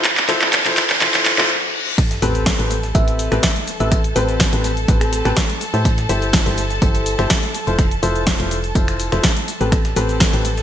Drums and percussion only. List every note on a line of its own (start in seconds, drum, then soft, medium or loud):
0.04 kick loud
0.04 clap loud
0.04 closed hi-hat medium
0.17 clap medium
0.17 closed hi-hat medium
0.29 clap medium
0.29 open hi-hat loud
0.41 clap medium
0.41 closed hi-hat soft
0.53 kick loud
0.53 clap medium
0.53 closed hi-hat medium
0.66 clap medium
0.66 closed hi-hat medium
0.77 clap loud
0.77 open hi-hat medium
0.90 clap medium
0.90 closed hi-hat soft
1.01 kick loud
1.01 clap loud
1.01 closed hi-hat medium
1.14 clap medium
1.14 closed hi-hat medium
1.25 clap loud
1.25 open hi-hat loud
1.38 clap medium
1.38 closed hi-hat soft
1.98 finger snap medium
1.98 kick loud
1.98 closed hi-hat medium
1.98 crash loud
1.98 tambourine medium
1.98 cabasa soft
2.11 snare medium
2.11 closed hi-hat medium
2.11 cabasa soft
2.22 open hi-hat loud
2.22 tambourine medium
2.22 cabasa medium
2.35 closed hi-hat soft
2.35 cabasa soft
2.46 kick loud
2.46 snare loud
2.46 closed hi-hat medium
2.46 open hi-hat medium
2.46 cabasa soft
2.59 closed hi-hat medium
2.59 cabasa soft
2.71 open hi-hat medium
2.71 tambourine medium
2.71 cabasa medium
2.83 snare medium
2.83 closed hi-hat soft
2.83 cabasa soft
2.95 kick loud
2.95 closed hi-hat medium
2.95 tambourine medium
2.95 cabasa soft
3.08 closed hi-hat soft
3.08 closed hi-hat medium
3.08 cabasa soft
3.19 open hi-hat loud
3.19 tambourine medium
3.19 cabasa medium
3.32 finger snap medium
3.32 closed hi-hat soft
3.32 cabasa soft
3.43 kick loud
3.43 snare loud
3.43 closed hi-hat medium
3.43 tambourine medium
3.43 cabasa soft
3.56 closed hi-hat medium
3.67 open hi-hat medium
3.67 tambourine medium
3.67 cabasa medium
3.80 closed hi-hat soft
3.80 cabasa soft
3.92 finger snap medium
3.92 kick loud
3.92 closed hi-hat medium
3.92 tambourine medium
3.92 cabasa soft
4.04 closed hi-hat medium
4.04 cabasa soft
4.16 open hi-hat loud
4.16 tambourine medium
4.16 cabasa medium
4.29 closed hi-hat soft
4.29 cabasa soft
4.40 kick loud
4.40 snare loud
4.40 closed hi-hat medium
4.40 tambourine medium
4.40 cabasa soft
4.53 snare medium
4.53 closed hi-hat medium
4.53 cabasa soft
4.64 snare soft
4.64 open hi-hat loud
4.64 tambourine medium
4.64 cabasa medium
4.77 closed hi-hat soft
4.77 cabasa soft
4.88 kick loud
4.88 closed hi-hat medium
4.88 tambourine medium
4.88 cabasa soft
5.01 finger snap medium
5.01 closed hi-hat medium
5.01 cabasa soft
5.13 open hi-hat loud
5.13 tambourine medium
5.13 cabasa medium
5.25 finger snap medium
5.25 closed hi-hat soft
5.25 cabasa soft
5.37 kick loud
5.37 snare loud
5.37 closed hi-hat medium
5.37 tambourine medium
5.37 cabasa soft
5.50 closed hi-hat medium
5.61 open hi-hat loud
5.61 tambourine medium
5.61 cabasa medium
5.74 closed hi-hat soft
5.74 cabasa soft
5.85 finger snap medium
5.85 kick loud
5.85 closed hi-hat medium
5.85 tambourine medium
5.85 cabasa soft
5.98 snare medium
5.98 closed hi-hat soft
5.98 cabasa soft
6.09 open hi-hat loud
6.09 tambourine medium
6.09 cabasa medium
6.22 closed hi-hat soft
6.22 cabasa soft
6.33 kick loud
6.33 snare loud
6.33 closed hi-hat medium
6.33 open hi-hat medium
6.33 cabasa soft
6.46 closed hi-hat medium
6.46 cabasa soft
6.58 open hi-hat loud
6.58 tambourine medium
6.58 cabasa medium
6.70 snare medium
6.70 closed hi-hat soft
6.70 cabasa soft
6.82 kick loud
6.82 closed hi-hat medium
6.82 tambourine medium
6.82 cabasa soft
6.95 closed hi-hat medium
6.95 closed hi-hat soft
6.95 cabasa soft
7.06 open hi-hat loud
7.06 tambourine medium
7.06 cabasa medium
7.19 finger snap medium
7.19 closed hi-hat soft
7.19 cabasa soft
7.30 kick loud
7.30 snare loud
7.30 closed hi-hat medium
7.30 tambourine medium
7.30 cabasa soft
7.43 closed hi-hat medium
7.54 open hi-hat loud
7.54 tambourine medium
7.54 cabasa medium
7.67 closed hi-hat soft
7.67 cabasa soft
7.79 finger snap medium
7.79 kick loud
7.79 closed hi-hat medium
7.79 tambourine medium
7.79 cabasa soft
7.91 closed hi-hat soft
7.91 cabasa soft
8.03 open hi-hat loud
8.03 tambourine medium
8.03 cabasa medium
8.15 closed hi-hat soft
8.15 cabasa soft
8.27 kick loud
8.27 snare loud
8.27 closed hi-hat medium
8.27 tambourine medium
8.27 cabasa soft
8.40 snare soft
8.40 closed hi-hat medium
8.40 cabasa soft
8.51 snare soft
8.51 open hi-hat loud
8.51 tambourine medium
8.51 cabasa medium
8.64 closed hi-hat soft
8.64 cabasa soft
8.75 kick loud
8.75 closed hi-hat medium
8.75 tambourine medium
8.75 cabasa soft
8.88 finger snap medium
8.88 closed hi-hat soft
8.88 cabasa soft
9.00 open hi-hat loud
9.00 tambourine medium
9.00 cabasa medium
9.12 finger snap medium
9.12 closed hi-hat soft
9.12 cabasa soft
9.24 kick loud
9.24 snare loud
9.24 closed hi-hat medium
9.24 tambourine medium
9.24 cabasa soft
9.37 closed hi-hat medium
9.37 cabasa soft
9.48 open hi-hat medium
9.48 tambourine medium
9.48 cabasa medium
9.61 closed hi-hat soft
9.61 cabasa soft
9.72 finger snap medium
9.72 kick loud
9.72 closed hi-hat medium
9.72 tambourine medium
9.72 cabasa soft
9.85 snare medium
9.85 closed hi-hat soft
9.85 cabasa soft
9.96 open hi-hat loud
9.96 tambourine medium
9.96 cabasa medium
10.09 closed hi-hat soft
10.09 cabasa soft
10.20 kick loud
10.20 snare loud
10.20 closed hi-hat medium
10.20 open hi-hat medium
10.20 cabasa soft
10.33 closed hi-hat medium
10.33 cabasa soft
10.45 open hi-hat loud
10.45 tambourine medium
10.45 cabasa medium
10.58 snare medium
10.58 closed hi-hat soft
10.58 cabasa soft